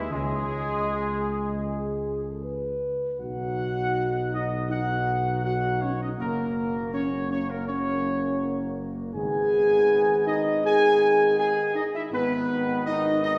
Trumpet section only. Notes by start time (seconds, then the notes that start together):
0.11 G#4
3.20 F#5
4.34 D#5
4.72 F#5
5.45 F#5
5.82 C#5
6.02 D#5
6.20 A#4
6.94 C#5
7.32 C#5
7.50 A#4
7.68 C#5
9.15 G#5
10.27 D#5
10.66 G#5
11.39 G#5
11.76 D#5
11.95 E5
12.13 B4
12.86 D#5
13.22 D#5